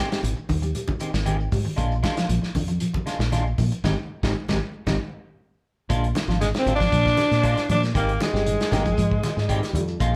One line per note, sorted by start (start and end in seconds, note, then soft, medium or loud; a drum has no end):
0.00 0.11 G#3 medium
0.00 0.11 C4 medium
0.11 0.21 G3 medium
0.11 0.22 G#3 medium
0.11 0.22 C4 soft
0.11 0.22 G4 medium
0.11 snare medium
0.11 closed hi-hat soft
0.11 shekere soft
0.23 0.35 G#1 medium
0.23 0.43 D#3 medium
0.23 muted clean electric guitar stroke soft
0.23 closed hi-hat medium
0.23 low conga medium
0.23 shekere medium
0.37 muted clean electric guitar stroke soft
0.37 shekere soft
0.49 0.72 D#2 medium
0.49 0.60 D#3 medium
0.49 muted clean electric guitar stroke soft
0.49 kick medium
0.49 open hi-hat medium
0.49 high conga medium
0.49 low conga medium
0.49 shekere medium
0.62 0.73 G3 medium
0.62 muted clean electric guitar stroke medium
0.62 closed hi-hat soft
0.62 shekere soft
0.75 0.95 G3 medium
0.75 closed hi-hat medium
0.75 shekere medium
0.88 muted clean electric guitar stroke soft
0.88 kick medium
0.88 high conga medium
0.88 shekere soft
1.00 1.14 D#3 medium
1.00 1.20 D#3 medium
1.00 1.13 G#3 medium
1.00 1.13 C4 medium
1.00 1.12 G4 medium
1.00 closed hi-hat medium
1.00 shekere medium
1.13 1.47 G#1 medium
1.13 muted clean electric guitar stroke soft
1.13 snare medium
1.13 shekere soft
1.25 1.40 D#3 medium
1.25 1.39 G#3 medium
1.25 1.38 C4 medium
1.25 1.38 G4 medium
1.25 closed hi-hat medium
1.25 high conga medium
1.25 shekere medium
1.39 muted clean electric guitar stroke soft
1.39 shekere soft
1.52 1.64 G#2 medium
1.52 1.72 G3 medium
1.52 kick medium
1.52 open hi-hat medium
1.52 low conga medium
1.52 shekere medium
1.65 muted clean electric guitar stroke soft
1.65 high conga medium
1.65 shekere soft
1.76 2.00 A#1 medium
1.76 1.97 D3 medium
1.76 1.93 G#3 medium
1.76 1.93 D4 medium
1.76 1.94 F4 medium
1.76 kick medium
1.76 closed hi-hat medium
1.76 shekere medium
1.91 shekere soft
2.03 2.17 G#3 medium
2.03 2.16 D4 medium
2.03 2.15 F4 medium
2.03 kick medium
2.03 snare medium
2.03 closed hi-hat soft
2.03 high conga loud
2.03 low conga medium
2.03 shekere medium
2.16 2.27 F3 medium
2.16 2.28 D4 soft
2.16 2.28 F4 medium
2.16 snare medium
2.16 closed hi-hat medium
2.16 shekere soft
2.28 2.41 A#1 medium
2.28 2.49 F3 medium
2.28 muted clean electric guitar stroke soft
2.28 closed hi-hat medium
2.28 low conga medium
2.28 shekere medium
2.42 muted clean electric guitar stroke soft
2.42 snare soft
2.42 shekere soft
2.55 2.78 F2 medium
2.55 2.66 D3 medium
2.55 muted clean electric guitar stroke soft
2.55 kick medium
2.55 open hi-hat medium
2.55 high conga medium
2.55 low conga medium
2.55 shekere medium
2.68 2.78 F3 medium
2.68 muted clean electric guitar stroke soft
2.68 closed hi-hat soft
2.68 shekere soft
2.80 3.00 F3 medium
2.80 closed hi-hat medium
2.80 shekere medium
2.94 muted clean electric guitar stroke soft
2.94 kick medium
2.94 high conga medium
2.94 shekere soft
3.06 3.26 D3 medium
3.06 3.20 G#3 medium
3.06 3.19 D4 medium
3.06 3.19 F4 medium
3.06 snare soft
3.06 closed hi-hat soft
3.06 shekere medium
3.19 3.53 A#1 medium
3.19 muted clean electric guitar stroke soft
3.19 snare medium
3.19 shekere soft
3.32 3.46 G#3 medium
3.32 3.45 D4 loud
3.32 3.44 F4 medium
3.32 snare soft
3.32 closed hi-hat medium
3.32 high conga medium
3.32 shekere medium
3.46 muted clean electric guitar stroke soft
3.46 shekere soft
3.58 3.70 A#2 medium
3.58 3.78 F3 medium
3.58 kick medium
3.58 open hi-hat medium
3.58 low conga medium
3.58 shekere medium
3.72 muted clean electric guitar stroke soft
3.72 closed hi-hat soft
3.72 shekere soft
3.84 3.94 G#1 medium
3.84 3.93 D#3 medium
3.84 3.93 G3 medium
3.84 3.93 G#3 medium
3.84 3.93 C4 medium
3.84 3.93 D#4 medium
3.84 kick medium
3.84 snare medium
3.84 high conga medium
3.84 shekere medium
4.23 4.32 G#1 medium
4.23 4.31 D#3 medium
4.23 4.32 G3 medium
4.23 4.31 G#3 medium
4.23 4.31 G#3 loud
4.23 4.31 C4 medium
4.23 4.31 D#4 loud
4.23 kick medium
4.23 snare medium
4.23 high conga medium
4.23 shekere medium
4.49 4.58 G#1 medium
4.49 4.57 D#3 medium
4.49 4.57 G3 medium
4.49 4.57 G#3 medium
4.49 4.57 C4 medium
4.49 4.57 D#4 medium
4.49 kick medium
4.49 snare medium
4.49 high conga medium
4.49 shekere medium
4.87 4.97 G#1 medium
4.87 4.95 D#3 medium
4.87 4.95 G3 medium
4.87 4.95 G#3 medium
4.87 4.96 G#3 medium
4.87 4.95 C4 medium
4.87 4.96 D#4 medium
4.87 kick medium
4.87 snare medium
4.87 high conga medium
4.87 shekere medium
5.89 6.12 A#1 loud
5.89 6.09 D3 medium
5.89 6.05 G#3 medium
5.89 6.05 D4 medium
5.89 6.06 F4 medium
5.89 kick medium
5.89 closed hi-hat medium
5.89 shekere medium
6.04 closed hi-hat soft
6.15 muted clean electric guitar stroke soft
6.15 snare medium
6.15 closed hi-hat medium
6.15 high conga loud
6.15 shekere soft
6.28 6.51 G#1 medium
6.28 6.38 F3 medium
6.28 6.40 D4 soft
6.28 6.41 F4 medium
6.28 snare soft
6.28 shekere soft
6.41 6.60 D3 medium
6.41 6.48 G#3 medium
6.41 6.50 G#3 medium
6.41 muted clean electric guitar stroke soft
6.41 snare soft
6.41 closed hi-hat medium
6.41 shekere medium
6.54 muted clean electric guitar stroke soft
6.54 snare medium
6.54 closed hi-hat soft
6.58 6.74 C4 medium
6.65 6.88 G#1 medium
6.65 6.76 D3 medium
6.65 6.80 G#3 medium
6.65 6.80 D4 medium
6.65 6.79 F4 medium
6.65 closed hi-hat soft
6.65 high conga medium
6.65 low conga medium
6.65 shekere loud
6.75 7.65 D4 loud
6.75 7.66 D4 loud
6.80 6.89 F3 medium
6.80 muted clean electric guitar stroke soft
6.80 kick medium
6.80 snare soft
6.80 closed hi-hat soft
6.80 shekere medium
6.91 7.14 A#2 loud
6.91 7.11 F3 medium
6.91 kick medium
6.91 closed hi-hat medium
6.91 shekere medium
7.06 muted clean electric guitar stroke medium
7.06 kick medium
7.06 snare soft
7.17 7.37 D3 medium
7.17 snare soft
7.17 closed hi-hat medium
7.17 high conga medium
7.17 shekere medium
7.31 7.54 A#2 medium
7.31 snare soft
7.31 closed hi-hat soft
7.31 shekere soft
7.43 7.57 G#3 loud
7.43 7.56 D4 medium
7.43 7.56 F4 medium
7.43 kick medium
7.43 closed hi-hat medium
7.43 shekere medium
7.57 muted clean electric guitar stroke soft
7.57 muted fingered electric bass stroke soft
7.57 snare soft
7.57 closed hi-hat soft
7.69 7.91 A#2 medium
7.69 7.89 F3 medium
7.69 7.82 D4 medium
7.69 muted clean electric guitar stroke soft
7.69 closed hi-hat medium
7.69 high conga medium
7.69 low conga medium
7.69 shekere soft
7.83 snare soft
7.83 shekere medium
7.94 8.17 G#1 medium
7.94 8.10 D#3 medium
7.94 8.14 D#3 medium
7.94 8.11 G#3 medium
7.94 8.19 A#3 loud
7.94 8.20 A#3 medium
7.94 8.11 C4 medium
7.94 8.11 G4 medium
7.94 kick medium
7.94 closed hi-hat medium
7.94 shekere medium
8.09 closed hi-hat soft
8.20 9.71 G#3 medium
8.20 9.72 G#3 medium
8.20 muted clean electric guitar stroke soft
8.20 snare medium
8.20 closed hi-hat medium
8.20 high conga loud
8.20 shekere soft
8.33 8.56 G1 loud
8.33 8.43 G3 medium
8.33 8.44 G#3 soft
8.33 8.45 C4 medium
8.33 8.45 G4 medium
8.33 snare soft
8.33 shekere soft
8.45 8.65 D#3 medium
8.45 muted clean electric guitar stroke soft
8.45 closed hi-hat medium
8.45 shekere medium
8.60 muted clean electric guitar stroke soft
8.60 snare medium
8.60 closed hi-hat soft
8.71 8.94 G1 medium
8.71 8.85 D#3 medium
8.71 8.82 D#3 medium
8.71 8.83 A#3 loud
8.71 8.85 C4 medium
8.71 8.84 G4 medium
8.71 snare soft
8.71 closed hi-hat medium
8.71 high conga medium
8.71 low conga medium
8.71 shekere medium
8.85 8.95 F3 medium
8.85 muted clean electric guitar stroke medium
8.85 kick medium
8.85 closed hi-hat soft
8.85 shekere medium
8.97 9.20 G#2 loud
8.97 9.17 F3 medium
8.97 9.45 G#3 loud
8.97 kick medium
8.97 closed hi-hat medium
8.97 shekere medium
9.11 muted clean electric guitar stroke medium
9.11 kick medium
9.23 9.42 D#3 medium
9.23 snare soft
9.23 closed hi-hat medium
9.23 high conga medium
9.23 shekere medium
9.37 9.59 G#2 medium
9.37 muted clean electric guitar stroke soft
9.37 snare soft
9.37 shekere soft
9.48 9.62 D#3 loud
9.48 9.71 G3 medium
9.48 9.62 G#3 medium
9.48 9.62 C4 medium
9.48 9.62 G4 loud
9.48 kick medium
9.48 closed hi-hat medium
9.48 shekere medium
9.62 muted fingered electric bass stroke soft
9.62 muted clean electric guitar stroke medium
9.62 snare soft
9.62 closed hi-hat soft
9.73 9.96 F2 medium
9.73 9.84 G3 medium
9.73 9.93 G3 medium
9.73 muted clean electric guitar stroke soft
9.73 closed hi-hat medium
9.73 high conga medium
9.73 low conga medium
9.73 shekere soft
9.88 shekere medium
10.00 10.16 A#1 loud
10.00 10.16 F3 medium
10.00 10.16 G#3 loud
10.00 10.16 F4 loud
10.00 muted clean electric guitar stroke medium
10.00 kick medium
10.00 closed hi-hat medium
10.00 shekere medium